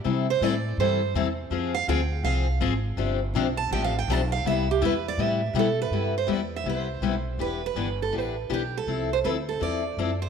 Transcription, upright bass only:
X:1
M:4/4
L:1/8
Q:"Swing" 1/4=163
K:C
V:1 name="Upright bass" clef=bass
C,2 A,,2 G,,2 E,,2 | F,,2 D,,2 C,,2 _A,,,2 | G,,,2 B,,,2 A,,,2 B,,,2 | C,,2 E,,2 A,,2 B,,2 |
G,,2 E,,2 C,,2 B,,,2 | E,,,2 G,,,2 A,,,2 B,,,2 | C,,2 D,,2 E,,2 ^F,,2 |]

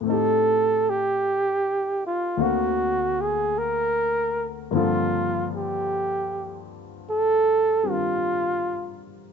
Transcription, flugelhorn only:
X:1
M:4/4
L:1/16
Q:"Swing" 1/4=52
K:Gdor
V:1 name="Flugelhorn"
A2 G4 F2 ^F2 _A2 ^A3 z | F2 G4 z2 A2 F4 z2 |]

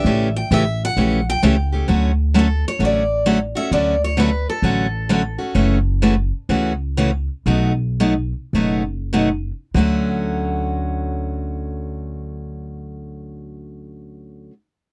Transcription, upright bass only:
X:1
M:4/4
L:1/8
Q:"Swing" 1/4=127
K:D
V:1 name="Upright bass" clef=bass
A,,,2 A,,,2 _B,,,2 C,,2 | D,,4 A,,,4 | D,,4 A,,,4 | F,,,4 C,,4 |
B,,,4 F,,,4 | D,,8- | D,,8 |]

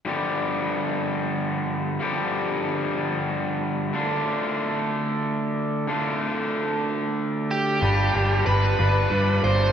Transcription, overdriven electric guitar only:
X:1
M:6/8
L:1/8
Q:3/8=62
K:Gmix
V:1 name="Overdriven electric guitar"
[G,,D,F,G,B,G]6 | [G,,D,F,G,B,G]6 | [D,A,DF]6 | [D,A,DF]6 |
[G,DFB] [G,DFB] [G,DFB] [G,DFB] [G,DFB] [G,DFB] |]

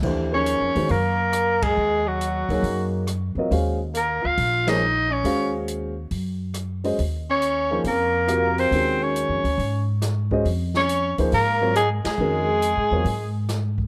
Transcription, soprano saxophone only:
X:1
M:4/4
L:1/8
Q:"Swing" 1/4=138
K:Ebdor
V:1 name="Soprano saxophone"
z d3 B3 A- | A G4 z3 | z2 B f2 e2 d- | d z6 z |
z d3 B3 c- | c d4 z3 | z d2 z B2 A A- | A6 z2 |]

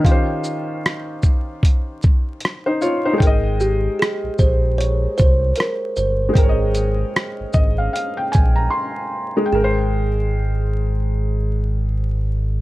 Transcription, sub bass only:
X:1
M:4/4
L:1/16
Q:"Swing 16ths" 1/4=76
K:Ab
V:1 name="Sub bass" clef=bass
z16 | A,,,4 z B,,, B,,,4 C,,2 z2 G,,,2 | A,,,4 z A,,, A,,,2 z2 B,,,2 z4 | A,,,16 |]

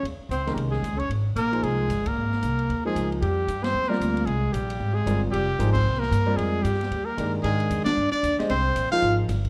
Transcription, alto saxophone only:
X:1
M:4/4
L:1/8
Q:"Swing" 1/4=227
K:Ebmix
V:1 name="Alto saxophone"
z2 C2 B, A,2 D | z2 B,2 A,3 B,- | B,4- B, A,2 z | [K:Fdor] G,3 C2 B,3 |
A,2 G,3 A,2 z | G,3 C2 B,3 | A,2 G,3 B,2 z | A,3 D2 D2 z |
C3 F2 z3 |]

